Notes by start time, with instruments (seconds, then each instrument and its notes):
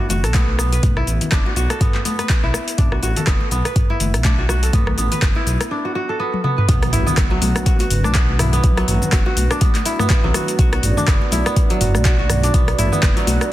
Already playing: kora A3 B3 D4 E4 B4
0.09 detuned saw bass F#1, kora F#4, closed hi-hat, high conga, low conga, shaker
0.24 detuned saw bass B1, kora A4, cross-stick, closed hi-hat, shaker
0.34 kora B3, kick, clap, closed hi-hat, muted conga, high conga, shaker
0.59 kora B3, cross-stick, muted conga, shaker
0.72 kora B4, closed hi-hat, shaker
0.83 detuned saw bass B1, kick, closed hi-hat, mid tom, muted conga, high conga, shaker
0.97 kora E4, cross-stick
1.07 detuned saw bass A1, closed hi-hat, shaker
1.21 closed hi-hat, muted conga, low conga, shaker
1.32 detuned saw bass F#1, kora D4, kick, cross-stick, clap, closed hi-hat, shaker
1.46 kora F#4, muted conga
1.56 detuned saw bass B1, kora F#4, closed hi-hat, shaker
1.70 kora A4, cross-stick, closed hi-hat, muted conga, shaker
1.81 kora B3, kick, closed hi-hat, mid tom, shaker
1.95 clap, muted conga
2.05 kora B3, closed hi-hat, high conga, shaker
2.19 kora B4, cross-stick, closed hi-hat, high conga, shaker
2.29 kick, clap, closed hi-hat, shaker
2.43 detuned saw bass B1, kora E4
2.54 cross-stick, muted conga, shaker
2.68 closed hi-hat, shaker
2.78 detuned saw bass B1, kora D4, kick, closed hi-hat, mid tom, muted conga, high conga, shaker
2.92 kora F#4, cross-stick
3.02 detuned saw bass A1, kora F#4, closed hi-hat, shaker
3.16 kora A4, closed hi-hat, muted conga, low conga, shaker
3.27 detuned saw bass F#1, kora B3, kick, cross-stick, clap, closed hi-hat, shaker
3.41 muted conga
3.51 detuned saw bass B1, kora B3, closed hi-hat, shaker
3.65 kora B4, cross-stick, closed hi-hat, muted conga, shaker
3.76 kick, closed hi-hat, mid tom, shaker
3.90 kora E4, muted conga
4.00 detuned saw bass F#1, closed hi-hat, high conga, low conga, shaker
4.14 detuned saw bass B1, cross-stick, closed hi-hat, shaker
4.24 kora D4, kick, clap, closed hi-hat, muted conga, high conga, shaker
4.39 kora F#4
4.49 kora F#4, cross-stick, muted conga, shaker
4.63 kora A4, closed hi-hat, shaker
4.73 detuned saw bass B1, kora B3, kick, closed hi-hat, mid tom, muted conga, high conga, shaker
4.87 cross-stick, low conga
4.98 detuned saw bass A1, kora B3, closed hi-hat, shaker
5.12 kora B4, closed hi-hat, muted conga, low conga, shaker
5.22 detuned saw bass F#1, kick, cross-stick, clap, closed hi-hat, shaker
5.35 kora E4, muted conga
5.46 detuned saw bass B1, closed hi-hat, shaker
5.61 cross-stick, closed hi-hat, muted conga, shaker
5.71 kora D4
5.85 kora F#4
5.95 kora F#4
6.09 kora A4
6.19 kora B3
6.34 high tom
6.44 kora B3, mid tom
6.58 kora B4, mid tom
6.68 detuned saw bass B1, analog synth pad A3 D4 F#4 B4, kora B3, kick, closed hi-hat, impact, muted conga, shaker
6.83 cross-stick, closed hi-hat
6.93 detuned saw bass A1, kora E4, mid tom, open hi-hat, shaker
7.06 kora B3, muted conga, high conga, low conga, shaker
7.17 detuned saw bass F#1, kick, cross-stick, clap, closed hi-hat, shaker
7.30 kora F#3, muted conga
7.41 detuned saw bass B1, kora F#4, open hi-hat, high conga, shaker
7.56 cross-stick, closed hi-hat, shaker
7.66 kora F#4, kick, closed hi-hat, shaker
7.79 kora F#4, closed hi-hat, muted conga
7.90 detuned saw bass F#1, mid tom, open hi-hat, shaker
8.04 detuned saw bass B1, kora D4, cross-stick, high conga, shaker
8.15 kora B3, kick, clap, closed hi-hat, shaker
8.29 high conga
8.39 kora E4, cross-stick, mid tom, open hi-hat, muted conga, low conga, shaker
8.53 kora B3, closed hi-hat, shaker
8.63 detuned saw bass B1, kick, closed hi-hat, muted conga, shaker
8.77 kora F#3, cross-stick, closed hi-hat
8.88 detuned saw bass A1, kora F#4, mid tom, open hi-hat, shaker
9.02 muted conga, low conga, shaker
9.12 detuned saw bass F#1, kora F#4, kick, cross-stick, clap, closed hi-hat, shaker
9.26 kora F#4, muted conga
9.37 detuned saw bass B1, open hi-hat, high conga, shaker
9.51 kora D4, cross-stick, closed hi-hat, muted conga, shaker
9.61 kora B3, kick, closed hi-hat, high conga, shaker
9.75 clap, closed hi-hat, muted conga
9.85 kora E4, open hi-hat, shaker
9.99 kora B3, cross-stick, mid tom, high conga, shaker
10.10 kick, clap, closed hi-hat, shaker
10.24 detuned saw bass B1, kora F#3, low conga
10.34 kora F#4, cross-stick, open hi-hat, muted conga, shaker
10.48 closed hi-hat, shaker
10.58 detuned saw bass B1, kora F#4, analog synth pad D5, kick, closed hi-hat, muted conga, shaker
10.73 kora F#4, cross-stick, closed hi-hat
10.83 detuned saw bass A1, mid tom, open hi-hat, shaker
10.97 kora D4, muted conga, high conga, low conga, shaker
11.08 detuned saw bass F#1, kora B3, kick, cross-stick, clap, closed hi-hat, shaker
11.22 muted conga
11.31 detuned saw bass B1, kora E4, open hi-hat, high conga, shaker
11.45 kora B3, cross-stick, closed hi-hat, muted conga, shaker
11.56 kick, closed hi-hat, shaker
11.70 kora F#3, closed hi-hat, muted conga
11.81 detuned saw bass F#1, kora F#4, mid tom, open hi-hat, shaker
11.95 detuned saw bass B1, cross-stick, high conga, shaker
12.05 kora F#4, kick, clap, closed hi-hat, muted conga, shaker
12.19 kora F#4, high conga
12.29 cross-stick, mid tom, open hi-hat, muted conga, low conga, shaker
12.43 kora D4, closed hi-hat, shaker
12.54 detuned saw bass B1, kora B3, kick, closed hi-hat, muted conga, shaker
12.68 cross-stick, closed hi-hat
12.78 detuned saw bass A1, kora E4, mid tom, open hi-hat, shaker
12.92 kora B3, muted conga, low conga, shaker
13.03 detuned saw bass F#1, kick, cross-stick, clap, closed hi-hat, shaker
13.17 kora F#3, closed hi-hat, muted conga
13.27 detuned saw bass B1, kora F#4, open hi-hat, high conga, shaker
13.41 cross-stick, closed hi-hat, muted conga, shaker